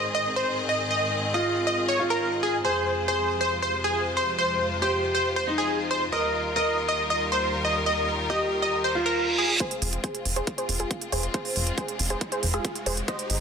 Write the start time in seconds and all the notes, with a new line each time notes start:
Already playing: G#2 D#3 C4 G#4 D#5
0.15 D#5
0.36 C5
0.69 D#5
0.91 D#5
1.34 F4 D#5
1.67 D#5
1.88 C#5
1.99 F4
2.10 A#4
2.43 G#4
2.65 F2 C3 G#3 F4 G#4 C5
3.08 G#4 C5
3.41 C5
3.62 C5
3.84 G#4
4.17 C5
4.38 C5
4.82 G4 C5
5.15 C5
5.36 C5
5.47 D#4
5.58 G#4
5.91 C5
6.12 D#2 D#3 G3 A#4 D#5
6.56 A#4 D#5
6.89 D#5
7.10 D#5
7.32 C5
7.65 D#5
7.86 D#5
8.30 G4 D#5
8.62 D#5
8.73 reverse cymbal
8.84 C5
8.95 F4
9.06 A#4
9.38 G#4
9.60 G#3 C4 F4 G#4 C5, kick, closed hi-hat, riser
9.71 closed hi-hat
9.82 F1, open hi-hat
9.93 closed hi-hat
10.04 G#4 C5, kick, closed hi-hat
10.15 closed hi-hat
10.25 F1, open hi-hat
10.36 G#4 C5, closed hi-hat
10.47 kick, closed hi-hat
10.58 G#4 C5, closed hi-hat
10.69 F1, open hi-hat
10.80 F4 G#4, closed hi-hat
10.91 kick, closed hi-hat
11.01 closed hi-hat
11.12 F1 G#4 C5, open hi-hat
11.23 closed hi-hat
11.34 G#4 C5, kick, closed hi-hat
11.45 open hi-hat
11.56 F1, open hi-hat
11.67 closed hi-hat
11.78 G#4 C5, kick, closed hi-hat
11.88 closed hi-hat
11.99 F1, open hi-hat
12.10 G#4 C5, closed hi-hat
12.21 kick, closed hi-hat
12.32 G#4 C5, closed hi-hat
12.43 F1, open hi-hat
12.54 F4 G#4, closed hi-hat
12.65 kick, closed hi-hat
12.75 closed hi-hat
12.86 F1 G#4 C5, open hi-hat
12.97 closed hi-hat
13.08 C4 D#4 C5 D#5, kick, closed hi-hat
13.19 closed hi-hat
13.30 G#1, open hi-hat